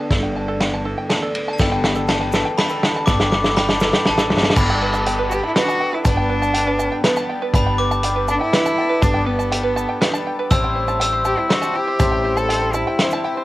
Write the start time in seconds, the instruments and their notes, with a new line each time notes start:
Already playing: steel-string acoustic guitar D2 D3 B3 D4, five-string banjo A4 G5
0.00 five-string banjo A5
0.10 upright bass G1, steel-string acoustic guitar G2, five-string banjo A4, kick, snare, ride
0.23 five-string banjo G5
0.36 steel-string acoustic guitar D4, five-string banjo A5
0.48 five-string banjo A4
0.60 steel-string acoustic guitar D3 B3, five-string banjo G5, snare, ride
0.74 five-string banjo A5
0.85 steel-string acoustic guitar E4, five-string banjo A4
0.98 five-string banjo G5
1.09 steel-string acoustic guitar D2 D4, five-string banjo A5, snare, ride
1.22 five-string banjo A4
1.35 steel-string acoustic guitar B3, ride
1.48 five-string banjo A5
1.53 glockenspiel A5
1.58 upright bass G1, twelve-string acoustic guitar G3 B3 D4 A4, five-string banjo A4, glockenspiel G5, kick, snare, ride, shaker
1.72 five-string banjo G5
1.84 five-string banjo A5, snare
1.95 five-string banjo A4, shaker
2.07 twelve-string acoustic guitar G3 B3 D4 A4, five-string banjo G5, glockenspiel A5, snare, ride, shaker
2.21 five-string banjo A5
2.32 twelve-string acoustic guitar B3 D4 A4, five-string banjo A4, snare, shaker
2.45 five-string banjo G5
2.57 twelve-string acoustic guitar G3 B3 D4 A4, five-string banjo A5, glockenspiel B5, snare, ride, shaker
2.69 five-string banjo A4, shaker
2.83 five-string banjo G5, snare
2.96 five-string banjo A5
3.06 upright bass G1, twelve-string acoustic guitar G3 B3 D4 A4, five-string banjo A4, glockenspiel D6, kick, snare, shaker
3.20 five-string banjo G5, snare, shaker
3.32 five-string banjo A5, glockenspiel D6, snare
3.44 five-string banjo A4, snare, shaker
3.57 twelve-string acoustic guitar G3 B3 D4 A4, five-string banjo G5, glockenspiel B5, snare
3.69 five-string banjo A5, snare
3.80 twelve-string acoustic guitar B3 A4, five-string banjo A4, snare, shaker
3.85 twelve-string acoustic guitar D4
3.93 five-string banjo G5, snare
4.06 upright bass A1, twelve-string acoustic guitar G3 B3 D4, five-string banjo A5, glockenspiel A5, snare
4.10 twelve-string acoustic guitar A4
4.18 five-string banjo A4, snare, shaker
4.30 upright bass G1, twelve-string acoustic guitar B3 A4, snare
4.35 twelve-string acoustic guitar D4, snare
4.43 five-string banjo A5, snare
4.50 snare
4.56 upright bass G1, twelve-string acoustic guitar G3 B3 D4 A4, five-string banjo A5, glockenspiel B5, kick, crash, shaker
4.70 five-string banjo G5
4.82 five-string banjo B4
4.94 five-string banjo A5, shaker
5.06 twelve-string acoustic guitar G3 B3 D4 A4, five-string banjo G5, closed hi-hat
5.19 five-string banjo B4
5.29 cello F#4, twelve-string acoustic guitar A4, five-string banjo A5, shaker
5.33 twelve-string acoustic guitar B3 D4, cello G4
5.43 cello E4, five-string banjo B5
5.56 twelve-string acoustic guitar G3 B3 D4 A4, cello F#4, five-string banjo B4, snare, closed hi-hat
5.68 five-string banjo A5, shaker
5.80 twelve-string acoustic guitar B3 D4 A4, five-string banjo G5
5.93 cello E4, five-string banjo B4
6.05 upright bass G1, twelve-string acoustic guitar G3 B3 D4 A4, cello D4, five-string banjo A5, kick, closed hi-hat, shaker
6.17 five-string banjo G5
6.29 five-string banjo B4
6.42 five-string banjo A5, shaker
6.54 twelve-string acoustic guitar G3 B3 D4 A4, five-string banjo G5, closed hi-hat
6.67 five-string banjo B4
6.79 five-string banjo A5, shaker
6.92 five-string banjo G5
7.04 twelve-string acoustic guitar G3 B3 D4 A4, cello B3, five-string banjo B4, snare, closed hi-hat
7.16 five-string banjo A5, shaker
7.29 five-string banjo G5
7.42 five-string banjo B4
7.54 upright bass G1, twelve-string acoustic guitar G3 B3 D4 A4, five-string banjo A5, glockenspiel B5, kick, closed hi-hat, shaker
7.66 five-string banjo G5
7.78 five-string banjo B4, glockenspiel D6
7.91 five-string banjo A5, shaker
8.03 twelve-string acoustic guitar G3 B3 D4 A4, five-string banjo G5, closed hi-hat
8.16 five-string banjo B4
8.28 twelve-string acoustic guitar B3 D4 A4, cello D4, five-string banjo A5, shaker
8.41 cello E4, five-string banjo G5
8.53 twelve-string acoustic guitar G3 B3 D4 A4, five-string banjo B4, snare, closed hi-hat
8.66 five-string banjo A5, shaker
8.78 twelve-string acoustic guitar B3 D4 A4, five-string banjo G5
8.89 five-string banjo B4
9.02 upright bass G1, twelve-string acoustic guitar G3 B3 D4 A4, cello D4, five-string banjo A5, kick, closed hi-hat, shaker
9.14 five-string banjo G5
9.26 cello B3, five-string banjo B4
9.39 five-string banjo A5, shaker
9.52 twelve-string acoustic guitar G3 B3 D4 A4, five-string banjo G5, closed hi-hat, shaker
9.63 five-string banjo B4
9.76 five-string banjo A5, shaker
9.89 five-string banjo G5
10.01 twelve-string acoustic guitar G3 B3 D4 A4, five-string banjo B4, snare, closed hi-hat, shaker
10.14 five-string banjo A5, shaker
10.27 five-string banjo G5
10.39 five-string banjo B4
10.51 upright bass A1, twelve-string acoustic guitar A2 G3 C4 E4 G4, five-string banjo A5, glockenspiel E6, kick, closed hi-hat, shaker
10.64 five-string banjo G5
10.76 five-string banjo C5
10.88 five-string banjo A5, shaker
11.00 twelve-string acoustic guitar G3 C4 E4 G4, five-string banjo G5, glockenspiel E6, closed hi-hat
11.13 five-string banjo C5
11.25 cello G4, five-string banjo A5, shaker
11.37 cello E4, five-string banjo G5
11.49 twelve-string acoustic guitar G3 C4 E4 G4, cello F#4, five-string banjo C5, snare, closed hi-hat
11.62 five-string banjo A5, shaker
11.74 twelve-string acoustic guitar C4 E4 G4, cello G4, five-string banjo G5
11.87 five-string banjo C5
11.99 upright bass A1, twelve-string acoustic guitar A2 G3 C4 E4 G4, five-string banjo A5, kick, closed hi-hat, shaker
12.12 five-string banjo G5
12.25 five-string banjo C5
12.37 cello A4, five-string banjo A5, shaker
12.49 twelve-string acoustic guitar G3 C4 E4 G4, five-string banjo G5, closed hi-hat
12.61 five-string banjo C5
12.73 cello E4, five-string banjo A5, shaker
12.87 five-string banjo G5
12.99 twelve-string acoustic guitar G3 C4 E4 G4, five-string banjo C5, snare, closed hi-hat
13.11 five-string banjo A5, shaker
13.24 twelve-string acoustic guitar C4 E4 G4, five-string banjo G5
13.37 five-string banjo C5